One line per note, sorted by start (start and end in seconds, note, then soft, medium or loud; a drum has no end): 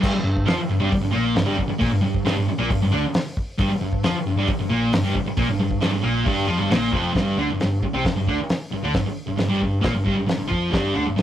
0.00 0.13 G1 loud
0.00 0.12 G2 loud
0.00 0.13 G3 loud
0.00 kick loud
0.00 crash loud
0.14 muted picked electric bass stroke soft
0.14 muted distorted electric guitar stroke medium
0.24 0.45 G1 medium
0.24 0.42 G2 medium
0.37 kick medium
0.46 0.57 F2 loud
0.46 0.57 F3 medium
0.46 0.57 F4 medium
0.46 snare loud
0.46 open hi-hat medium
0.57 muted distorted electric guitar stroke medium
0.57 muted picked electric bass stroke soft
0.69 0.80 G1 medium
0.69 0.78 G2 medium
0.80 0.91 G1 loud
0.80 0.89 G2 medium
0.80 0.90 G3 loud
0.90 muted distorted electric guitar stroke medium
0.90 muted picked electric bass stroke soft
0.90 kick loud
0.90 open hi-hat medium
1.01 1.13 G1 medium
1.01 1.13 G2 medium
1.11 1.35 A#1 medium
1.11 1.34 A#2 loud
1.11 1.34 A#3 loud
1.35 1.46 G1 medium
1.35 1.44 G2 medium
1.35 snare loud
1.35 open hi-hat medium
1.45 1.57 G1 loud
1.45 1.56 G2 medium
1.45 1.57 G3 loud
1.58 muted distorted electric guitar stroke medium
1.58 muted picked electric bass stroke soft
1.58 kick medium
1.69 muted distorted electric guitar stroke medium
1.69 muted picked electric bass stroke soft
1.79 1.91 A#1 loud
1.79 1.90 A#2 medium
1.79 1.91 A#3 medium
1.79 kick loud
1.79 open hi-hat medium
1.91 2.02 G1 medium
1.91 2.00 G2 medium
2.02 2.24 G1 medium
2.02 2.20 G2 medium
2.15 kick medium
2.25 2.36 G1 loud
2.25 2.35 G2 medium
2.25 2.36 G3 medium
2.25 snare medium
2.25 open hi-hat medium
2.37 2.47 G1 medium
2.37 2.47 G2 medium
2.48 muted distorted electric guitar stroke medium
2.48 muted picked electric bass stroke soft
2.58 2.69 A#1 loud
2.58 2.69 A#2 medium
2.58 2.69 A#3 loud
2.69 2.80 G1 medium
2.69 2.80 G2 medium
2.69 kick loud
2.69 open hi-hat medium
2.81 2.91 G1 medium
2.81 2.92 G2 medium
2.92 3.03 D2 medium
2.92 3.02 D3 loud
2.92 3.02 D4 loud
3.02 muted distorted electric guitar stroke medium
3.02 muted picked electric bass stroke soft
3.14 snare loud
3.14 open hi-hat medium
3.37 kick medium
3.58 3.69 G1 medium
3.58 3.69 G2 loud
3.58 3.69 G3 medium
3.58 kick loud
3.58 open hi-hat medium
3.70 muted distorted electric guitar stroke medium
3.70 muted picked electric bass stroke soft
3.81 4.01 G1 medium
3.81 3.99 G2 medium
3.93 kick medium
4.03 4.14 F2 medium
4.03 4.14 F3 medium
4.03 4.14 F4 loud
4.03 snare loud
4.03 open hi-hat medium
4.15 muted picked electric bass stroke soft
4.15 muted distorted electric guitar stroke medium
4.25 4.35 G1 medium
4.25 4.36 G2 medium
4.36 4.46 G1 loud
4.36 4.47 G2 medium
4.36 4.48 G3 loud
4.48 muted picked electric bass stroke soft
4.48 muted distorted electric guitar stroke medium
4.48 kick loud
4.48 open hi-hat medium
4.59 4.69 G1 medium
4.59 4.70 G2 medium
4.70 4.90 A#1 medium
4.70 4.91 A#2 loud
4.70 4.91 A#3 medium
4.92 5.03 G1 medium
4.92 5.02 G2 medium
4.92 snare loud
4.92 open hi-hat medium
5.03 5.14 G1 medium
5.03 5.13 G2 medium
5.03 5.14 G3 loud
5.15 muted picked electric bass stroke soft
5.15 muted distorted electric guitar stroke medium
5.15 kick medium
5.26 muted picked electric bass stroke soft
5.26 muted distorted electric guitar stroke medium
5.37 5.47 A#1 loud
5.37 5.47 A#2 loud
5.37 5.48 A#3 loud
5.37 kick loud
5.37 open hi-hat medium
5.47 5.58 G1 medium
5.47 5.58 G2 medium
5.59 5.80 G1 medium
5.59 5.77 G2 medium
5.71 kick medium
5.81 5.91 G1 medium
5.81 5.91 G2 medium
5.81 5.92 G3 medium
5.81 snare medium
5.81 open hi-hat medium
5.92 6.02 G1 medium
5.92 6.03 G2 medium
6.03 6.24 A#1 loud
6.03 6.24 A#2 loud
6.03 6.25 A#3 loud
6.25 6.47 G1 medium
6.25 6.47 G2 medium
6.25 6.47 G3 loud
6.25 kick loud
6.25 open hi-hat medium
6.46 6.58 F2 loud
6.46 6.58 F3 loud
6.46 6.58 F4 loud
6.58 6.69 G1 medium
6.58 6.69 G2 medium
6.58 6.69 G3 loud
6.70 6.91 A#1 loud
6.70 6.92 A#2 medium
6.70 6.92 A#3 medium
6.70 snare loud
6.70 open hi-hat medium
6.92 7.14 F1 medium
6.92 7.13 F2 medium
6.92 7.13 F3 loud
6.92 kick medium
7.13 7.36 G1 medium
7.13 7.35 G2 medium
7.13 7.36 G3 loud
7.13 kick loud
7.13 snare loud
7.13 open hi-hat soft
7.36 7.47 D2 medium
7.36 7.48 D3 medium
7.36 7.48 D4 medium
7.49 7.59 G1 medium
7.49 7.59 G2 medium
7.59 7.80 G1 medium
7.59 7.78 G2 medium
7.59 snare medium
7.59 open hi-hat soft
7.83 muted picked electric bass stroke soft
7.83 muted distorted electric guitar stroke medium
7.83 kick medium
7.93 8.03 C2 loud
7.93 8.04 C3 medium
7.93 8.04 C4 medium
8.04 8.14 G1 medium
8.04 8.15 G2 medium
8.04 kick loud
8.04 snare loud
8.04 open hi-hat medium
8.15 8.26 G1 medium
8.15 8.27 G2 medium
8.27 8.37 D2 medium
8.27 8.38 D3 medium
8.27 8.38 D4 medium
8.27 kick medium
8.49 snare loud
8.49 open hi-hat medium
8.71 8.82 G1 medium
8.71 8.82 G2 medium
8.83 8.93 D2 medium
8.83 8.93 D3 medium
8.83 8.94 D4 medium
8.94 9.05 G1 medium
8.94 9.05 G2 medium
8.94 kick loud
8.94 snare loud
8.94 open hi-hat medium
9.06 muted picked electric bass stroke soft
9.06 muted distorted electric guitar stroke medium
9.27 9.38 G1 medium
9.27 9.36 G2 medium
9.38 9.50 G1 medium
9.38 9.47 G2 medium
9.38 snare medium
9.38 open hi-hat medium
9.49 9.61 G1 loud
9.49 9.58 G2 medium
9.49 9.60 G3 loud
9.59 9.82 G1 medium
9.59 9.78 G2 medium
9.59 kick medium
9.81 9.94 A#1 medium
9.81 9.93 A#2 medium
9.81 9.93 A#3 medium
9.81 kick loud
9.81 snare loud
9.81 open hi-hat medium
9.93 10.05 G1 medium
9.93 10.04 G2 medium
10.05 10.17 G1 medium
10.05 10.14 G2 loud
10.05 10.16 G3 loud
10.05 kick medium
10.15 10.28 G1 medium
10.15 10.25 G2 medium
10.26 muted distorted electric guitar stroke medium
10.26 snare loud
10.26 open hi-hat medium
10.38 10.50 G1 medium
10.38 10.50 G2 medium
10.48 10.72 F2 medium
10.48 10.71 F3 medium
10.48 10.71 F4 loud
10.48 kick medium
10.70 10.94 G1 loud
10.70 10.93 G2 medium
10.70 10.94 G3 loud
10.70 kick loud
10.70 snare loud
10.70 open hi-hat medium
10.94 11.06 D2 medium
10.94 11.05 D3 medium
10.94 11.05 D4 medium
11.05 11.17 G1 medium
11.05 11.15 G2 medium
11.16 11.22 G1 medium
11.16 11.22 G2 medium
11.16 snare loud
11.16 open hi-hat medium